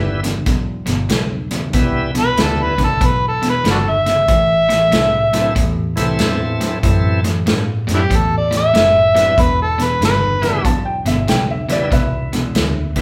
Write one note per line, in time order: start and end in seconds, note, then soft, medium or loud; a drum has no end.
0.00 0.44 G1 medium
0.00 0.20 E2 medium
0.00 0.20 C#3 medium
0.00 0.20 E3 medium
0.00 0.20 G3 medium
0.00 0.20 B3 medium
0.00 0.21 E4 medium
0.24 0.44 E2 medium
0.24 0.45 C#3 medium
0.24 snare soft
0.24 closed hi-hat medium
0.46 0.86 B1 medium
0.46 0.83 E2 medium
0.46 0.83 B2 medium
0.46 kick loud
0.46 snare soft
0.46 closed hi-hat medium
0.86 1.09 G1 medium
0.86 1.07 E2 medium
0.86 1.08 B2 medium
0.86 snare soft
0.86 closed hi-hat medium
1.09 1.71 B1 medium
1.09 1.47 E2 medium
1.09 1.47 C#3 medium
1.09 snare medium
1.09 closed hi-hat medium
1.51 1.72 E2 medium
1.51 1.72 C#3 medium
1.51 snare soft
1.51 closed hi-hat medium
1.73 2.34 C2 medium
1.73 2.11 E2 medium
1.73 2.11 B2 medium
1.73 2.11 E3 medium
1.73 2.11 G3 medium
1.73 2.11 B3 medium
1.73 2.11 E4 medium
1.73 kick loud
1.73 snare soft
1.73 closed hi-hat medium
2.15 2.35 E2 medium
2.15 2.36 B2 medium
2.15 snare soft
2.15 closed hi-hat medium
2.20 2.44 B4 medium
2.37 2.76 D2 medium
2.37 2.75 E2 medium
2.37 2.75 C#3 medium
2.37 2.74 E3 medium
2.37 2.74 G3 medium
2.37 2.75 B3 medium
2.37 2.75 E4 medium
2.37 snare loud
2.37 closed hi-hat medium
2.42 2.64 A4 medium
2.63 2.82 B4 medium
2.78 3.00 C2 medium
2.78 2.99 E2 medium
2.78 2.99 C#3 medium
2.78 kick medium
2.78 snare soft
2.78 closed hi-hat medium
2.84 3.07 A4 medium
3.01 3.62 B1 medium
3.01 3.38 E2 medium
3.01 3.38 B2 medium
3.01 kick loud
3.01 closed hi-hat medium
3.06 3.24 B4 medium
3.28 3.46 A4 medium
3.42 3.63 E2 medium
3.42 3.63 B2 medium
3.42 snare soft
3.42 closed hi-hat medium
3.49 3.67 B4 medium
3.64 4.25 G1 medium
3.64 4.02 E2 medium
3.64 4.02 C#3 medium
3.64 snare loud
3.64 closed hi-hat medium
3.71 3.77 D4 medium
3.71 3.78 F#4 medium
3.71 3.93 A4 medium
3.91 5.76 E5 medium
4.06 4.27 E2 medium
4.06 4.27 C#3 medium
4.06 snare soft
4.06 closed hi-hat soft
4.28 4.89 A1 medium
4.28 4.65 A2 medium
4.28 4.66 E3 medium
4.28 kick loud
4.28 closed hi-hat medium
4.69 4.90 A2 medium
4.69 4.90 E3 medium
4.69 snare soft
4.69 closed hi-hat medium
4.92 5.53 C2 medium
4.92 5.29 A2 medium
4.92 5.29 F#3 medium
4.92 snare loud
4.92 closed hi-hat medium
5.33 5.54 A2 medium
5.33 5.53 E3 medium
5.33 5.54 F#3 medium
5.33 5.53 A3 medium
5.33 5.54 C4 medium
5.33 5.54 E4 medium
5.33 snare soft
5.33 closed hi-hat medium
5.55 5.95 E2 medium
5.55 5.92 A2 medium
5.55 5.93 E3 medium
5.55 kick loud
5.55 closed hi-hat medium
5.96 6.19 C2 medium
5.96 6.17 A2 medium
5.96 6.78 E3 medium
5.96 6.18 E3 medium
5.96 6.79 A3 medium
5.96 6.79 C4 medium
5.96 6.79 E4 medium
5.96 snare soft
5.96 closed hi-hat medium
6.19 6.80 E2 medium
6.19 6.57 A2 medium
6.19 6.57 F#3 medium
6.19 snare loud
6.19 closed hi-hat medium
6.61 6.81 A2 medium
6.61 6.81 F#3 medium
6.61 snare soft
6.61 closed hi-hat medium
6.83 7.44 F#2 medium
6.83 7.20 A2 medium
6.83 7.20 E3 medium
6.83 7.20 A3 medium
6.83 7.21 C4 medium
6.83 7.21 E4 medium
6.83 kick loud
6.83 closed hi-hat medium
7.24 7.45 A2 medium
7.24 7.45 E3 medium
7.24 snare soft
7.24 closed hi-hat medium
7.46 7.86 G2 medium
7.46 7.83 A2 medium
7.46 7.84 F#3 medium
7.46 snare loud
7.46 closed hi-hat medium
7.87 8.10 F#2 medium
7.87 8.08 A2 medium
7.87 8.08 F#3 medium
7.87 snare soft
7.87 closed hi-hat medium
7.94 8.00 D4 medium
7.94 8.02 E4 medium
7.94 8.18 G4 medium
8.10 8.71 E2 medium
8.10 8.47 A2 medium
8.10 8.47 E3 medium
8.10 kick loud
8.10 closed hi-hat medium
8.16 8.34 A4 medium
8.37 8.55 D5 medium
8.51 8.71 A2 medium
8.51 8.72 E3 medium
8.51 snare soft
8.51 closed hi-hat medium
8.57 9.42 E5 medium
8.74 9.35 F#1 medium
8.74 9.11 A2 medium
8.74 9.11 F#3 medium
8.74 snare loud
8.74 closed hi-hat medium
9.14 9.35 A2 medium
9.14 9.35 E3 medium
9.14 9.35 F#3 medium
9.14 9.35 G3 medium
9.14 9.35 B3 medium
9.14 9.36 E4 medium
9.14 snare soft
9.14 closed hi-hat medium
9.38 9.98 E1 medium
9.38 9.74 E2 medium
9.38 9.75 B2 medium
9.38 9.60 B4 medium
9.38 kick loud
9.38 closed hi-hat medium
9.62 9.85 A4 medium
9.78 9.99 E2 medium
9.78 9.99 B2 medium
9.78 snare soft
9.78 closed hi-hat medium
9.84 10.02 B4 medium
10.01 10.61 G1 medium
10.01 10.38 E2 medium
10.01 10.38 C#3 medium
10.01 snare loud
10.01 closed hi-hat medium
10.05 10.65 B4 medium
10.42 10.62 E2 medium
10.42 10.63 C#3 medium
10.42 10.62 E3 medium
10.42 10.62 G3 medium
10.42 10.63 B3 medium
10.42 10.63 E4 medium
10.42 snare soft
10.42 closed hi-hat soft
10.65 11.03 B1 medium
10.65 11.01 E2 medium
10.65 11.02 B2 loud
10.65 10.86 A5 medium
10.65 kick medium
10.65 closed hi-hat medium
10.85 11.06 G5 medium
11.05 11.27 G1 medium
11.05 11.26 E2 medium
11.05 11.26 B2 medium
11.05 11.28 E5 medium
11.05 snare soft
11.05 closed hi-hat medium
11.28 11.89 B1 medium
11.28 11.65 E2 medium
11.28 11.65 C#3 medium
11.28 11.49 G5 medium
11.28 snare medium
11.28 closed hi-hat medium
11.51 11.71 E5 medium
11.69 11.89 E2 medium
11.69 11.89 C#3 medium
11.69 11.89 E3 medium
11.69 11.90 G3 soft
11.69 11.90 B3 soft
11.69 11.90 E4 medium
11.69 11.92 D5 medium
11.69 snare soft
11.69 closed hi-hat medium
11.91 12.52 C2 medium
11.91 12.28 E2 medium
11.91 12.28 B2 medium
11.91 12.86 B4 medium
11.91 12.87 E5 medium
11.91 kick loud
11.91 snare soft
11.91 closed hi-hat medium
12.33 12.53 E2 medium
12.33 12.53 B2 medium
12.33 snare soft
12.33 closed hi-hat medium
12.55 12.94 D2 medium
12.55 12.92 E2 medium
12.55 12.92 C#3 medium
12.55 snare loud
12.55 closed hi-hat medium
12.96 13.02 C2 medium
12.96 13.02 E2 medium
12.96 13.02 C#3 medium
12.96 13.02 E3 medium
12.96 13.02 G3 medium
12.96 13.02 B3 medium
12.96 13.02 E4 medium
12.96 kick medium
12.96 snare soft
12.96 closed hi-hat medium